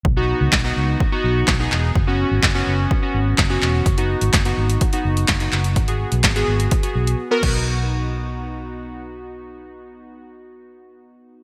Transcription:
<<
  \new Staff \with { instrumentName = "Synth keys" } { \time 4/4 \key b \major \tempo 4 = 126 r16 <b dis' fis'>8. r16 <b dis' fis'>8. r16 <b dis' fis'>8. r16 <b dis' gis'>8. | r16 <b cis' fis'>8. r16 <b cis' fis'>8. r16 <b cis' fis'>8. r16 <b cis' fis'>8. | r16 <b dis' fis'>8. r16 <b dis' fis'>8. r16 <b dis' fis'>8. r16 <b dis' fis'>8. | r16 <b fis' gis'>8. r16 <b fis' gis'>8. r16 <b fis' gis'>8. r16 <b fis' ais'>16 <b dis' fis'>8~ |
<b dis' fis'>1~ | <b dis' fis'>1 | }
  \new Staff \with { instrumentName = "Fingered electric bass" } { \clef bass \time 4/4 \key b \major b,,8. cis,16 b,,8 cis,8 r8 b,,8 b,,8 e,,8 | fis,,8. gis,,16 r8 fis,,8 r8 gis,,8 fis,,8 e,,8 | fis,,8. gis,,16 r8 gis,,8 r8 fis,,8 r8 fis,,8 | gis,,8. b,,16 r8 gis,,8 r8 b,,8 r8 b,,8~ |
b,,1~ | b,,1 | }
  \new DrumStaff \with { instrumentName = "Drums" } \drummode { \time 4/4 bd4 <hc bd sn>4 bd4 <hc bd sn>8 hc8 | bd4 <hc bd sn>4 bd4 <hc bd sn>8 hc8 | <hh bd>16 hh8 hh16 <hc hh bd sn>16 hh8 hh16 <hh bd>16 hh8 hh16 <hc hh bd sn>16 hh16 hc16 hh16 | <hh bd>16 hh8 hh16 <hc hh bd sn>16 hh8 hh16 <hh bd>16 hh8 hh16 r8 <cymc bd>8 |
r4 r4 r4 r4 | r4 r4 r4 r4 | }
>>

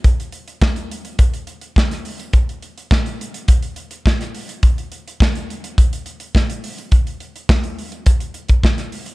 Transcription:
\new DrumStaff \with { instrumentName = "Drums" } \drummode { \time 4/4 \tempo 4 = 105 <hh bd>16 hh16 hh16 hh16 <bd sn>16 hh16 hh16 hh16 <hh bd>16 hh16 hh16 hh16 <bd sn>16 <hh sn>16 hho16 hh16 | <hh bd>16 hh16 hh16 hh16 <bd sn>16 hh16 hh16 hh16 <hh bd>16 hh16 hh16 hh16 <bd sn>16 <hh sn>16 hho16 hh16 | <hh bd>16 hh16 hh16 hh16 <bd sn>16 hh16 hh16 hh16 <hh bd>16 hh16 hh16 hh16 <bd sn>16 hh16 hho16 hh16 | <hh bd>16 hh16 hh16 hh16 <bd sn>16 hh16 hho16 hh16 <hh bd>16 hh16 hh16 <hh bd>16 <bd sn>16 <hh sn>16 hho16 hh16 | }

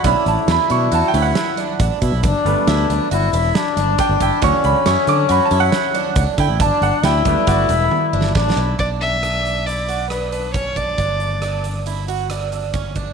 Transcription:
<<
  \new Staff \with { instrumentName = "Grand piano" } { \time 5/4 \key b \minor \tempo 4 = 137 b''8 a''8 b''8 cis'''8 \tuplet 3/2 { a''8 g''8 fis''8~ } fis''4 r4 | r1 g''8 g''8 | cis'''8 b''8 cis'''8 d'''8 \tuplet 3/2 { b''8 a''8 fis''8~ } fis''4 r8 g''8 | a''8 fis''8 g''4 d''8 r2 r8 |
r1 r4 | r1 r4 | }
  \new Staff \with { instrumentName = "Grand piano" } { \time 5/4 \key b \minor <d a cis'>2~ <d a cis'>8 <d a cis'>8 r2 | r8 <g a b>4. r2. | <e fis cis'>1~ <e fis cis'>4 | r4. <g a b>2.~ <g a b>8 |
r1 r4 | r1 r4 | }
  \new Staff \with { instrumentName = "Violin" } { \time 5/4 \key b \minor r1 r4 | r1 r4 | r1 r4 | r1 r4 |
d''8 e''4. d''4 b'8 b'8 cis''8 d''8~ | d''4. r2. r8 | }
  \new Staff \with { instrumentName = "Trombone" } { \time 5/4 \key b \minor e'1~ e'8 r8 | d'2 e'4 d'2 | cis'1~ cis'8 r8 | d'4 e'2. d'4 |
r1 r4 | r1 r4 | }
  \new Staff \with { instrumentName = "Twelve-string acoustic guitar" } { \time 5/4 \key b \minor d'4 e'8 d'8 fis'8 e'4 d'8 d'8 e'8 | d'4 e'8 d'8 fis'8 e'4 d'8 d'8 e'8 | d4 e'8 d'8 fis'8 e'4 d'8 d'8 e'8 | d'4 e'8 d'8 fis'8 e'4 d'8 d'8 e'8 |
d'4 d'4 e'8 fis'8 d'8 d'8 cis'8 d'8 | d'4 d'4 e'8 fis'8 d'8 d'8 cis'8 d'8 | }
  \new Staff \with { instrumentName = "Fingered electric bass" } { \clef bass \time 5/4 \key b \minor b,,16 r16 a,,16 r16 e,16 r16 b,8 e,16 r16 d,8 r4 a,,16 r16 b,16 b,,16 | g,,16 r16 g,,16 r16 d,8 d,16 r16 g,,8 e,,8 r8 g,,8 r16 g,,16 g,,16 r16 | d,16 r16 cis,16 r16 fis,16 r16 d8 fis,16 r16 fis,8 r4 cis,16 r16 d16 a,,16 | g,,16 r16 g,,16 r16 d,8 d,16 r16 g,,8 e,,8 r8 g,,8 a,,8 b,,8 |
b,,1~ b,,4 | g,,1~ g,,4 | }
  \new DrumStaff \with { instrumentName = "Drums" } \drummode { \time 5/4 <hh bd>8 hh8 <hh sn>8 hh8 hh8 hh8 <hh sn>8 hh8 <hh bd>8 <hh bd>8 | <hh bd>8 hh8 <hh sn>8 hh8 hh8 hh8 <hh sn>8 <hh sn>8 <hh bd sn>8 <hh bd>8 | <hh bd>8 hh8 <hh sn>8 hh8 hh8 hh8 <hh sn>8 hh8 <hh bd>8 <hh bd>8 | <hh bd>8 hh8 <hh sn>8 <hh bd>8 <hh bd>8 hh8 \tuplet 3/2 { tommh8 r8 sn8 <bd sn>8 sn8 r8 } |
<hh bd>8 hh8 <hh ss>8 hh8 hh8 hh8 <hh ss>8 hh8 <hh bd>8 <hh bd>8 | <hh bd>8 hh8 <hh ss>8 hh8 hh8 hh8 <hh ss>8 hh8 <hh bd>8 <hh bd>8 | }
>>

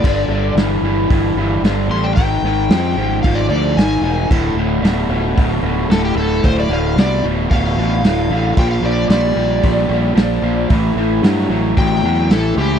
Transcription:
<<
  \new Staff \with { instrumentName = "Electric slide guitar" } { \time 4/4 \key d \minor \tempo 4 = 112 d''4 r2 r8 c'''16 g''16 | g''2 f''16 d''16 d''8 gis''4 | r2. a'16 g'16 a'8 | c''16 d''16 f''8 d''8 r8 f''2 |
g''16 f''16 d''8 d''2. | r2 g''4 a'8 g'8 | }
  \new Staff \with { instrumentName = "Overdriven electric guitar" } { \clef bass \time 4/4 \key d \minor <g, d>8 <g, d>8 <g, e>8 <g, e>8 <g, e>8 <g, e>8 <g, d>8 <g, d>8 | <gis, dis>8 <gis, dis>8 <gis, f>8 <gis, f>8 <gis, f>8 <gis, f>8 <gis, dis>8 <gis, dis>8 | <d, a,>8 <d, a,>8 <d, b,>8 <d, b,>8 <d, b,>8 <d, b,>8 <d, a,>8 <d, a,>8 | <d, a,>8 <d, a,>8 <d, b,>8 <d, b,>8 <d, b,>8 <d, b,>8 <d, a,>8 <d, a,>8 |
<bes, f>8 <bes, f>8 <bes, g>8 <bes, g>8 <bes, g>8 <bes, g>8 <bes, f>8 <bes, f>8 | <a, e>8 <a, e>8 <a, fis>8 <a, fis>8 <a, fis>8 <a, fis>8 <a, e>8 <a, e>8 | }
  \new Staff \with { instrumentName = "Fingered electric bass" } { \clef bass \time 4/4 \key d \minor g,,8 g,,8 g,,8 g,,8 g,,8 g,,8 g,,8 a,,8 | gis,,8 gis,,8 f,8 gis,,8 gis,,8 d,8 gis,,8 e,,8 | d,,8 d,,8 d,,8 d,,8 d,,8 d,,8 d,,8 d,,8 | d,,8 d,,8 c,8 d,,8 d,,8 a,,8 d,,8 a,,8 |
bes,,8 bes,,8 bes,,8 bes,,8 bes,,8 bes,,8 bes,,8 bes,,8 | a,,8 a,,8 g,8 a,,8 a,,8 e,8 a,,8 cis,8 | }
  \new DrumStaff \with { instrumentName = "Drums" } \drummode { \time 4/4 <cymc bd>4 <hho sn>4 <hho bd>4 <hho sn>4 | <hho bd>4 <hho sn>4 <hho bd>4 <hho sn>4 | <cymc bd>4 <hho sn>4 <hho bd>4 <hho sn>4 | <hho bd>4 <hho sn>4 <hho bd>4 <hho sn>4 |
<cymc bd>4 <hho sn>4 <hho bd>4 <hho sn>4 | <hho bd>4 <hho sn>4 <hho bd>4 <hho sn>4 | }
>>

